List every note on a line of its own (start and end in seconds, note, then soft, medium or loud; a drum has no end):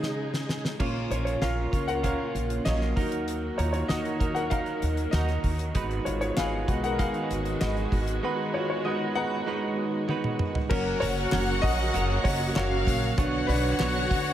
0.00 0.45 C#3 soft
0.00 0.79 C#3 medium
0.00 0.45 G#3 soft
0.00 0.79 G#3 medium
0.00 0.46 D#4 soft
0.00 0.79 D#4 medium
0.00 0.46 G#4 medium
0.00 0.80 G#4 medium
0.00 0.45 D#5 medium
0.00 snare medium
0.34 snare medium
0.49 snare medium
0.65 snare medium
0.79 1.06 A#1 medium
0.79 1.11 A#2 medium
0.79 2.95 C#3 medium
0.79 1.69 A#3 soft
0.79 1.11 A#3 medium
0.79 2.95 A#3 medium
0.79 1.69 C#4 soft
0.79 1.12 C#4 medium
0.79 1.11 F4 medium
0.79 2.95 F4 medium
0.79 1.11 F4 medium
0.79 1.09 C#5 medium
0.79 kick loud
0.79 crash medium
1.10 1.36 A#1 medium
1.10 1.41 C#4 soft
1.10 1.42 F4 soft
1.10 1.25 F4 medium
1.10 1.42 C#5 medium
1.10 1.23 C#5 medium
1.10 closed hi-hat medium
1.25 1.41 F4 medium
1.25 1.42 C#5 medium
1.25 closed hi-hat soft
1.41 1.67 A#1 medium
1.41 1.73 A#3 medium
1.41 1.73 C#4 medium
1.41 1.72 F4 medium
1.41 1.86 A#4 medium
1.41 1.71 C#5 medium
1.41 1.90 F5 medium
1.41 snare medium
1.41 closed hi-hat medium
1.72 2.11 C#2 medium
1.72 2.04 C#4 soft
1.72 2.04 F4 soft
1.72 2.04 C#5 medium
1.72 kick medium
1.72 closed hi-hat medium
1.88 2.03 A#4 medium
1.88 2.04 F#5 medium
1.88 closed hi-hat soft
2.03 2.66 A#2 medium
2.03 2.65 A#3 medium
2.03 2.65 C#4 medium
2.03 2.66 F4 medium
2.03 2.63 A#4 medium
2.03 2.67 C#5 medium
2.03 2.68 F5 medium
2.03 kick medium
2.03 closed hi-hat medium
2.35 2.60 A#1 medium
2.35 closed hi-hat medium
2.50 closed hi-hat soft
2.65 2.91 A#1 medium
2.65 3.10 F#3 medium
2.65 2.96 A#3 medium
2.65 2.97 C#4 medium
2.65 2.96 F4 medium
2.65 2.96 C#5 medium
2.65 3.09 D#5 medium
2.65 snare loud
2.65 closed hi-hat medium
2.81 snare soft
2.96 3.48 D#2 medium
2.96 10.67 D#3 medium
2.96 3.88 D#3 medium
2.96 5.73 F#3 medium
2.96 5.40 A#3 medium
2.96 5.73 A#3 medium
2.96 5.40 D#4 soft
2.96 3.60 D#4 medium
2.96 3.59 F#4 medium
2.96 3.89 F#4 medium
2.96 5.73 F#4 medium
2.96 3.57 A#4 medium
2.96 kick medium
2.96 open hi-hat medium
3.12 closed hi-hat medium
3.28 closed hi-hat medium
3.58 3.84 D#2 loud
3.58 3.89 D#4 soft
3.58 3.64 F4 medium
3.58 3.90 F#4 soft
3.58 3.89 A#4 medium
3.58 3.63 C#5 medium
3.58 closed hi-hat medium
3.73 3.80 F4 medium
3.73 3.78 C#5 medium
3.73 closed hi-hat soft
3.88 4.15 D#2 loud
3.88 4.20 D#3 medium
3.88 4.21 D#4 medium
3.88 4.33 F#4 medium
3.88 4.20 F#4 medium
3.88 4.18 A#4 medium
3.88 4.37 D#5 medium
3.88 snare medium
3.88 closed hi-hat medium
4.05 closed hi-hat soft
4.20 4.59 D#2 medium
4.20 4.50 D#4 soft
4.20 4.50 F#4 medium
4.20 4.51 A#4 medium
4.20 kick medium
4.20 closed hi-hat medium
4.35 4.51 A#4 medium
4.35 4.50 F#5 medium
4.35 closed hi-hat soft
4.50 5.12 D#3 medium
4.50 5.14 D#4 medium
4.50 5.14 F#4 medium
4.50 5.14 A#4 medium
4.50 5.10 A#4 medium
4.50 5.15 F5 medium
4.50 kick medium
4.50 closed hi-hat medium
4.66 closed hi-hat soft
4.82 5.08 D#2 medium
4.82 closed hi-hat medium
4.97 closed hi-hat soft
5.11 5.39 D#2 medium
5.11 5.74 D#3 medium
5.11 5.75 D#4 medium
5.11 5.57 F#4 medium
5.11 5.76 F#4 medium
5.11 5.55 D#5 medium
5.11 snare loud
5.11 closed hi-hat medium
5.16 5.76 A#4 medium
5.28 snare soft
5.28 closed hi-hat soft
5.44 5.70 D#2 medium
5.44 kick medium
5.44 open hi-hat medium
5.59 closed hi-hat medium
5.75 6.01 G#1 loud
5.75 6.36 G#3 medium
5.75 10.67 G#3 medium
5.75 10.67 B3 medium
5.75 6.37 D#4 medium
5.75 10.67 F#4 medium
5.75 6.38 F#4 medium
5.75 6.38 B4 loud
5.75 kick loud
5.75 closed hi-hat medium
5.91 closed hi-hat soft
6.05 6.32 G#1 medium
6.05 6.21 F4 medium
6.05 6.19 C#5 medium
6.05 closed hi-hat medium
6.21 6.27 F4 medium
6.21 6.26 C#5 medium
6.21 closed hi-hat soft
6.37 6.63 G#1 medium
6.37 6.68 G#3 medium
6.37 6.69 D#4 medium
6.37 6.68 F#4 medium
6.37 6.81 G#4 medium
6.37 6.67 B4 medium
6.37 6.85 F5 medium
6.37 snare loud
6.37 clap medium
6.37 closed hi-hat medium
6.67 7.06 B1 medium
6.67 7.09 G#3 medium
6.67 7.09 B3 soft
6.67 6.98 D#4 soft
6.67 7.09 F#4 medium
6.67 6.99 F#4 medium
6.67 6.99 B4 medium
6.67 kick loud
6.67 closed hi-hat medium
6.84 6.99 A#4 medium
6.84 7.00 F#5 medium
6.84 closed hi-hat soft
6.99 7.59 G#3 medium
6.99 7.60 D#4 medium
6.99 7.62 F#4 medium
6.99 7.57 G#4 medium
6.99 7.62 B4 medium
6.99 7.63 F5 medium
6.99 kick medium
6.99 closed hi-hat medium
7.14 closed hi-hat soft
7.30 7.56 G#1 medium
7.30 closed hi-hat medium
7.45 closed hi-hat soft
7.60 7.87 G#1 loud
7.60 8.22 G#3 medium
7.60 8.22 D#4 medium
7.60 8.05 F#4 medium
7.60 8.23 F#4 medium
7.60 8.23 B4 medium
7.60 8.04 D#5 medium
7.60 snare loud
7.60 clap medium
7.60 closed hi-hat medium
7.77 closed hi-hat soft
7.92 8.18 G#1 medium
7.92 kick medium
7.92 open hi-hat medium
8.07 closed hi-hat medium
8.23 8.54 G#3 medium
8.23 9.12 G#3 medium
8.23 9.12 B3 medium
8.23 8.54 D#4 medium
8.23 8.54 F#4 medium
8.23 8.84 F#4 medium
8.23 8.52 B4 loud
8.54 8.85 D#4 soft
8.54 8.69 F4 medium
8.54 8.86 F#4 medium
8.54 8.85 B4 medium
8.54 8.68 C#5 medium
8.70 8.84 F4 medium
8.70 8.84 C#5 medium
8.85 9.16 G#3 medium
8.85 9.17 D#4 medium
8.85 9.14 F#4 medium
8.85 9.16 F#4 medium
8.85 9.14 B4 medium
8.85 9.17 D#5 medium
9.15 9.44 G#3 soft
9.15 9.44 B3 soft
9.15 9.46 D#4 medium
9.15 9.44 F#4 medium
9.15 9.46 F#4 medium
9.15 9.47 B4 medium
9.15 10.05 F#5 loud
9.15 10.05 A#5 medium
9.46 10.07 G#3 medium
9.46 10.07 D#4 medium
9.46 10.09 F#4 medium
9.46 10.09 B4 medium
10.08 10.70 G#3 medium
10.08 10.71 D#4 medium
10.08 10.71 F#4 medium
10.08 10.71 B4 medium
10.08 high tom medium
10.24 mid tom medium
10.39 mid tom medium
10.55 floor tom medium
10.69 10.96 F#1 loud
10.69 13.16 C#3 medium
10.69 11.01 F#3 medium
10.69 11.93 F#3 medium
10.69 13.16 F#3 medium
10.69 11.02 A#3 medium
10.69 13.16 A#3 medium
10.69 11.93 A#3 medium
10.69 11.00 C#4 medium
10.69 11.02 C#4 medium
10.69 12.52 F#4 medium
10.69 13.16 F#4 medium
10.69 11.01 F#4 medium
10.69 11.02 A#4 medium
10.69 10.99 A#4 medium
10.69 12.53 F#5 medium
10.69 kick loud
10.69 crash loud
11.00 11.27 F#1 medium
11.00 11.32 C#4 medium
11.00 11.32 F#4 medium
11.00 11.60 F#4 medium
11.00 11.32 A#4 medium
11.00 11.65 C#5 loud
11.00 hi-hat pedal medium
11.00 open hi-hat medium
11.31 11.58 F#1 loud
11.31 11.63 F#3 medium
11.31 11.63 A#3 medium
11.31 11.64 C#4 medium
11.31 11.63 F#4 medium
11.31 11.62 A#4 medium
11.31 snare loud
11.31 clap medium
11.31 hi-hat pedal medium
11.31 open hi-hat medium
11.62 11.89 A#1 medium
11.62 11.93 C#4 soft
11.62 12.21 F#4 medium
11.62 11.94 F#4 medium
11.62 11.94 A#4 medium
11.62 12.21 D#5 loud
11.62 kick loud
11.62 hi-hat pedal medium
11.62 open hi-hat medium
11.93 12.20 F#1 medium
11.93 12.22 F#3 soft
11.93 12.25 A#3 medium
11.93 12.22 A#3 soft
11.93 12.25 C#4 medium
11.93 12.23 C#4 medium
11.93 12.25 F#4 medium
11.93 12.23 A#4 medium
11.93 hi-hat pedal medium
11.93 open hi-hat medium
12.24 12.50 F#1 loud
12.24 12.55 C#4 soft
12.24 12.32 F#4 medium
12.24 12.56 F#4 medium
12.24 12.56 A#4 medium
12.24 12.31 C#5 medium
12.24 kick medium
12.24 hi-hat pedal medium
12.24 open hi-hat medium
12.55 12.82 F#1 loud
12.55 13.17 F#3 medium
12.55 13.18 A#3 loud
12.55 13.18 C#4 loud
12.55 13.17 F#4 medium
12.55 13.00 F#4 medium
12.55 13.18 F#4 loud
12.55 13.18 A#4 loud
12.55 12.99 C#5 medium
12.55 13.17 F5 medium
12.55 snare loud
12.55 clap medium
12.55 hi-hat pedal medium
12.55 open hi-hat medium
12.87 13.12 A#1 medium
12.87 kick medium
12.87 hi-hat pedal medium
12.87 open hi-hat medium
13.17 13.43 B1 loud
13.17 13.49 B2 medium
13.17 14.06 D3 medium
13.17 14.33 D3 medium
13.17 13.49 F#3 medium
13.17 14.07 B3 medium
13.17 13.49 B3 medium
13.17 14.33 B3 medium
13.17 13.49 D4 medium
13.17 14.33 F#4 medium
13.17 13.48 F#4 medium
13.17 14.33 C#5 medium
13.17 14.07 C#5 medium
13.17 13.47 C#5 medium
13.17 14.33 F#5 medium
13.17 kick loud
13.17 hi-hat pedal medium
13.17 open hi-hat medium
13.47 13.74 B1 loud
13.47 14.33 D4 medium
13.47 13.80 D4 medium
13.47 13.80 F#4 medium
13.47 14.33 B4 loud
13.47 13.80 C#5 medium
13.47 hi-hat pedal medium
13.47 open hi-hat medium
13.51 13.79 B3 soft
13.80 14.05 B1 loud
13.80 14.11 B2 medium
13.80 14.11 F#3 medium
13.80 14.11 B3 medium
13.80 14.11 D4 medium
13.80 14.10 F#4 medium
13.80 14.09 C#5 medium
13.80 snare loud
13.80 clap medium
13.80 hi-hat pedal medium
13.80 open hi-hat medium
14.10 14.33 D2 medium
14.10 14.33 B3 medium
14.10 14.33 D4 medium
14.10 14.33 F#4 medium
14.10 14.33 C#5 medium
14.10 kick loud
14.10 hi-hat pedal medium
14.10 open hi-hat medium